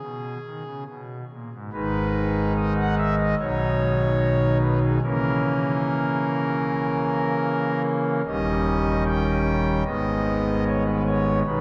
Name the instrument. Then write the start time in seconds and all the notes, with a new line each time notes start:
pipe organ
Already playing: G#4
0.01 B2
0.45 D#3
0.65 C#3
0.88 B2
1.31 A#2
1.52 G#2
1.72 G#1 G#2 D#3 G#3 D#4 B4
2.56 D#5
2.78 F#5
2.97 E5
3.17 D#5
3.39 B1 B2 D#3 F#3 D#4 C#5
4.62 B4
4.83 G#4
5.03 C#3 E3 A#3 C#4 A#4
8.26 D#1 D#2 D#3 G3 C#4 D#5
9.06 G5
9.85 G#1 G#2 D#3 G#3 B3 D#5
10.66 C#5
10.85 B4
11.05 C#5
11.45 B1 B2 D#3 G#3 D#4 B4